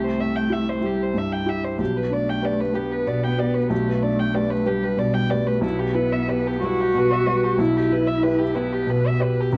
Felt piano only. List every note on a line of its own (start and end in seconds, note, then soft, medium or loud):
0.00 1.75 C2 soft
0.17 0.69 C4 soft
0.50 0.79 E4 soft
0.50 0.79 G4 soft
0.81 1.11 E4 soft
0.81 1.12 G4 soft
1.14 1.66 G2 soft
1.46 1.76 E4 soft
1.46 1.76 G4 soft
1.78 3.66 B1 soft
2.10 2.61 D4 soft
2.42 2.71 G4 soft
2.42 2.72 B4 soft
2.73 3.03 G4 soft
2.73 3.03 B4 soft
3.07 3.58 B2 soft
3.38 3.67 G4 soft
3.38 3.67 B4 soft
3.70 5.58 B1 medium
4.03 4.53 D4 soft
4.34 4.63 G4 soft
4.34 4.63 B4 soft
4.66 4.95 G4 soft
4.66 4.95 B4 soft
4.97 5.49 B2 soft
5.30 5.60 G4 soft
5.30 5.60 B4 soft
5.61 7.55 B1 medium
5.95 6.49 E4 soft
6.28 6.59 G4 soft
6.28 6.59 B4 soft
6.62 6.92 G3 soft
6.62 6.92 B4 soft
6.94 7.46 B2 soft
7.26 7.55 G3 soft
7.26 7.56 B4 soft
7.58 9.49 B1 medium
7.90 8.42 E4 soft
8.23 8.52 G4 soft
8.23 8.52 B4 soft
8.55 8.84 G4 soft
8.55 8.84 B4 soft
8.87 9.40 B2 soft
9.20 9.49 G4 soft
9.20 9.50 B4 soft
9.53 9.57 C#2 medium